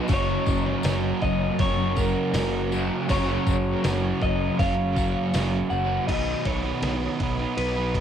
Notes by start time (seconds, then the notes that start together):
Already playing: F#3 F#4 D#5
0.08 F#1 F#2 C#3 F#3 A#3 C#4 F#4 A#5, kick, open hi-hat, tambourine
0.13 C#5
0.46 F#1 F#3, kick, tambourine
0.50 C#3
0.66 snare
0.83 F#1 F#2 C#3 F#3 A#3 C#4 F#4, snare, open hi-hat, tambourine
1.21 F#1 F#3 D#5, kick, tambourine
1.26 C#3
1.59 F#1 F#2 C#3 F#3 A#3 C#4 F#4 C#5, kick, open hi-hat
1.96 C#3 F#3 A#3 C#4 F#4 A#4, kick, tambourine
2.33 F#1 F#2 C#3 F#3 A#3 C#4, snare, open hi-hat, tambourine
2.37 F#4
2.71 F#2 C#3 F#3, tambourine
3.08 F#1 F#2 C#3 F#3 A#3 C#4 F#4 C#5, kick, open hi-hat, tambourine
3.45 F#1 C#3 F#3, kick, tambourine
3.83 F#1 F#2 C#3 F#3 A#3 C#4 F#4, snare, open hi-hat, tambourine
4.20 F#1 C#3 F#3 D#5, kick, tambourine
4.59 F#1 F#2 C#3 F#3 A#3 C#4 F#4 F5, kick, open hi-hat, tambourine
4.96 C#3 F#3 A#3 C#4 F#4, kick, tambourine
5.32 F#1 F#2 C#3 F#3 A#3, snare, open hi-hat, tambourine
5.36 C#4 F#4
5.70 F#1 F#2 C#3 F#3 F#5, tambourine
6.07 B1 B2 D#3 F#3 B3 D#4 B4 D#5 F#5 D#6, kick, crash, ride
6.45 B1 B2 F#3 B3 D#4 B4 C#5, kick, ride
6.62 B3 D#4 B4
6.67 F#3 B3
6.82 B1 B2 D#3 F#3 B3 D#4 B4, snare, ride
7.02 F#3 B3 D#4 B4
7.18 B1 B2 F#3 B3, kick, ride
7.23 D#4 B4
7.39 F#3 B3 D#4 B4
7.55 B1 B2 F#3 B3 B4, ride
7.77 F#3 B3 D#4 B4
7.94 F#3 B3 D#4 B4, kick, ride